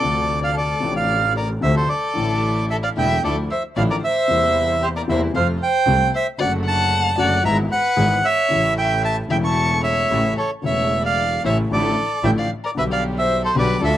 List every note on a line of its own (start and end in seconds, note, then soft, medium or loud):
0.00 0.78 D2 medium
0.00 0.77 C3 medium
0.00 0.78 D3 medium
0.00 0.77 F3 medium
0.00 0.78 A3 medium
0.00 0.38 A4 medium
0.00 0.40 D5 medium
0.04 0.79 D4 medium
0.43 0.55 D5 medium
0.43 0.55 F5 medium
0.55 0.92 A4 medium
0.55 0.94 D5 medium
0.80 1.58 A1 medium
0.80 1.59 A2 medium
0.80 1.57 C3 medium
0.80 1.58 F3 medium
0.80 1.59 A3 medium
0.80 1.59 D4 medium
0.95 1.33 D5 medium
0.95 1.33 F5 medium
1.37 1.49 A#4 medium
1.37 1.49 D5 medium
1.61 1.85 D2 medium
1.61 1.84 C3 medium
1.61 1.85 D3 medium
1.61 1.84 F3 medium
1.61 1.85 A3 medium
1.61 1.85 D4 medium
1.61 1.75 C5 medium
1.61 1.75 E5 medium
1.77 1.89 A4 medium
1.77 1.89 C5 medium
1.89 2.66 A4 medium
1.89 2.66 D5 medium
2.13 2.92 A1 medium
2.13 2.93 A1 medium
2.13 2.92 A2 medium
2.13 2.91 D3 medium
2.13 2.92 E3 medium
2.13 2.93 A3 medium
2.13 2.93 D4 medium
2.13 2.93 E4 medium
2.18 2.93 E4 medium
2.70 2.77 A4 medium
2.70 2.76 E5 medium
2.83 2.89 D5 medium
2.83 2.90 F5 medium
2.96 3.19 E1 medium
2.96 3.19 E2 medium
2.96 3.19 D3 medium
2.96 3.19 E3 medium
2.96 3.19 A3 medium
2.96 3.19 D4 medium
2.96 3.19 E4 medium
2.96 3.22 E5 medium
2.96 3.22 G5 medium
3.23 3.46 D2 medium
3.23 3.46 D3 medium
3.23 3.46 F3 medium
3.23 3.46 A3 medium
3.23 3.46 D4 medium
3.23 3.46 E4 medium
3.23 3.36 A4 medium
3.23 3.36 D5 medium
3.50 3.62 C5 medium
3.50 3.63 E5 medium
3.76 3.99 A1 medium
3.76 3.99 A2 medium
3.76 3.99 D3 medium
3.76 3.99 F3 medium
3.76 3.99 A3 medium
3.76 3.99 D4 medium
3.76 3.99 E4 medium
3.76 3.82 D5 medium
3.76 3.83 F5 medium
3.90 3.96 A#4 medium
3.90 3.96 D5 medium
4.02 4.78 C5 medium
4.02 4.85 E5 medium
4.28 5.04 E2 medium
4.28 5.05 E2 medium
4.28 5.04 C3 medium
4.28 5.05 E3 medium
4.28 5.04 G3 medium
4.28 5.05 A#3 medium
4.28 5.05 C4 medium
4.28 5.05 E4 medium
4.32 5.06 E4 medium
4.82 4.88 G4 medium
4.82 4.89 C5 medium
4.96 5.02 A#4 medium
4.96 5.02 D5 medium
5.07 5.30 E2 medium
5.07 5.30 C3 medium
5.07 5.30 E3 medium
5.07 5.30 G3 medium
5.07 5.30 A#3 medium
5.07 5.31 A#3 medium
5.07 5.31 C4 medium
5.07 5.30 E4 medium
5.07 5.31 E4 medium
5.07 5.21 C5 medium
5.07 5.21 E5 medium
5.33 5.56 F2 medium
5.33 5.57 F2 medium
5.33 5.56 C3 medium
5.33 5.56 F3 medium
5.33 5.56 A3 medium
5.33 5.57 A3 medium
5.33 5.57 C4 medium
5.33 5.56 F4 medium
5.33 5.57 F4 medium
5.33 5.47 C5 medium
5.33 5.47 F5 medium
5.60 6.09 C5 medium
5.60 6.11 G5 medium
5.86 6.09 C2 medium
5.86 6.09 C3 medium
5.86 6.09 F3 medium
5.86 6.09 A3 medium
5.86 6.10 C4 medium
5.86 6.09 F4 medium
5.86 6.10 F4 medium
6.14 6.26 C5 medium
6.14 6.27 E5 medium
6.38 7.14 F#1 medium
6.38 7.14 F#2 medium
6.38 7.13 D3 medium
6.38 7.14 F#3 medium
6.38 7.14 A3 medium
6.38 7.14 D4 medium
6.38 7.14 F#4 medium
6.38 6.51 D5 medium
6.38 6.53 F#5 medium
6.42 7.15 F#4 medium
6.65 7.14 F#5 medium
6.65 7.21 A5 loud
7.18 7.40 F#1 medium
7.18 7.40 F#2 medium
7.18 7.40 D3 medium
7.18 7.40 F#3 medium
7.18 7.40 A3 medium
7.18 7.40 D4 medium
7.18 7.40 F#4 medium
7.18 7.43 D5 medium
7.18 7.43 F#5 medium
7.43 7.66 G#1 medium
7.43 7.67 G#1 medium
7.43 7.66 G#2 medium
7.43 7.66 E3 medium
7.43 7.66 G#3 medium
7.43 7.67 G#3 medium
7.43 7.66 B3 medium
7.43 7.67 B3 medium
7.43 7.67 E4 medium
7.43 7.66 G#4 medium
7.43 7.57 E5 medium
7.43 7.57 A#5 medium
7.71 8.20 B4 medium
7.71 8.26 F#5 medium
7.96 8.19 G#1 medium
7.96 8.20 G#1 medium
7.96 8.19 G#2 medium
7.96 8.19 E3 medium
7.96 8.19 G#3 medium
7.96 8.20 G#3 medium
7.96 8.19 B3 medium
7.96 8.20 B3 medium
7.96 8.20 E4 medium
7.96 8.19 G#4 medium
8.25 8.74 C#5 medium
8.25 8.74 E5 loud
8.48 9.26 A1 medium
8.48 9.26 A2 medium
8.48 9.25 C#3 medium
8.48 9.26 E3 medium
8.48 9.26 A3 medium
8.48 9.26 C#4 medium
8.48 9.26 E4 medium
8.53 9.27 E4 medium
8.77 9.02 E5 medium
8.77 9.02 G5 medium
9.04 9.16 E5 medium
9.04 9.17 A5 medium
9.28 10.07 E1 medium
9.28 10.07 E2 medium
9.28 10.06 C#3 medium
9.28 10.07 E3 medium
9.28 10.07 A3 medium
9.28 10.07 C#4 medium
9.28 10.07 E4 medium
9.28 10.08 E4 medium
9.28 9.36 E5 medium
9.28 9.37 G5 medium
9.45 9.82 A5 medium
9.45 9.82 C#6 medium
9.84 10.34 C#5 medium
9.84 10.34 E5 medium
10.10 10.33 A1 medium
10.10 10.34 A1 medium
10.10 10.34 A2 medium
10.10 10.34 C#3 medium
10.10 10.34 E3 medium
10.10 10.34 A3 medium
10.10 10.34 C#4 medium
10.10 10.34 E4 medium
10.38 10.50 A4 medium
10.38 10.51 C#5 medium
10.62 11.40 E1 medium
10.62 11.41 E1 medium
10.62 11.40 E2 medium
10.62 11.39 C#3 medium
10.62 11.41 C#3 medium
10.62 11.40 E3 medium
10.62 11.41 E3 medium
10.62 11.40 A3 medium
10.62 11.41 A3 medium
10.62 11.02 C#5 medium
10.66 11.03 E5 medium
11.04 11.42 D5 medium
11.04 11.42 F5 medium
11.44 11.67 A1 medium
11.44 11.67 A2 medium
11.44 11.66 C#3 medium
11.44 11.67 E3 medium
11.44 11.67 A3 medium
11.44 11.67 C#4 medium
11.44 11.67 E4 medium
11.44 11.57 C#5 medium
11.44 11.57 E5 medium
11.71 11.93 A1 medium
11.71 11.93 A2 medium
11.71 11.93 D3 medium
11.71 11.93 F3 medium
11.71 11.93 A3 medium
11.71 11.94 D4 medium
11.71 11.93 E4 medium
11.71 11.94 E4 medium
11.71 12.21 A4 medium
11.71 12.26 D5 medium
12.23 12.46 A1 medium
12.23 12.46 A2 medium
12.23 12.46 D3 medium
12.23 12.46 F3 medium
12.23 12.46 A3 medium
12.23 12.46 D4 medium
12.23 12.46 E4 medium
12.23 12.30 E5 medium
12.23 12.31 G5 medium
12.38 12.50 D5 medium
12.38 12.50 F5 medium
12.64 12.70 A#4 medium
12.64 12.71 D5 medium
12.75 13.51 B1 medium
12.75 13.51 B2 medium
12.75 13.50 D3 medium
12.75 13.51 G3 medium
12.75 13.51 B3 medium
12.75 13.52 B3 medium
12.75 13.52 D4 medium
12.75 13.52 G4 medium
12.75 12.83 B4 medium
12.75 12.84 E5 medium
12.79 13.53 G4 medium
12.91 13.03 D5 medium
12.91 13.04 F5 medium
13.18 13.41 C5 medium
13.18 13.42 E5 medium
13.44 13.55 A4 medium
13.44 13.56 C5 medium
13.54 13.77 B1 medium
13.54 13.77 B2 medium
13.54 13.77 D3 medium
13.54 13.77 G3 medium
13.54 13.77 B3 medium
13.54 13.77 D4 medium
13.54 13.77 G4 medium
13.54 13.80 B4 medium
13.59 13.81 D5 medium
13.81 13.97 D2 medium
13.81 13.97 D3 medium
13.81 13.97 F3 medium
13.81 13.97 A3 medium
13.81 13.97 D4 medium
13.81 13.97 F4 medium
13.81 13.97 A4 medium
13.81 13.97 E5 medium